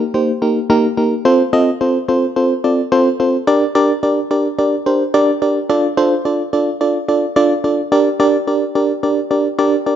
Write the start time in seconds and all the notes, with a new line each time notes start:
0.14 A#3 D#4 G4 C5
0.42 A#3 D#4 G4 A#4
0.70 A#3 D#4 G4 A#4
0.97 A#3 D#4 G4 A#4
1.25 C4 F4 A4 C5
1.53 C4 F4 A4 D#5
1.81 C4 F4 A4 C5
2.08 C4 F4 A4 C5
2.36 C4 F4 A4 C5
2.64 C4 F4 A4 D5
2.92 C4 F4 A4 C5
3.20 C4 F4 A4 C5
3.47 D4 G4 A#4 D5
3.75 D4 G4 A#4 D5
4.03 D4 G4 A#4 D5
4.31 D4 G4 A#4 D5
4.58 D4 G4 A#4 D5
4.86 D4 G4 A#4 C5
5.14 D4 G4 A#4 D5
5.42 D4 G4 A#4 D5
5.70 D4 F4 A4 D5
5.97 D4 F4 A4 C5
6.25 D4 F4 A4 D5
6.53 D4 F4 A4 D5
6.81 D4 F4 A4 D5
7.08 D4 F4 A4 D5
7.36 D4 F4 A4 D5
7.64 D4 F4 A4 D5
7.92 D4 G4 A#4 D5
8.20 D4 G4 A#4 D5
8.47 D4 G4 A#4 D5
8.75 D4 G4 A#4 D5
9.03 D4 G4 A#4 D5
9.31 D4 G4 A#4 D5
9.59 D4 G4 A#4 D5
9.86 D4 G4 A#4 D5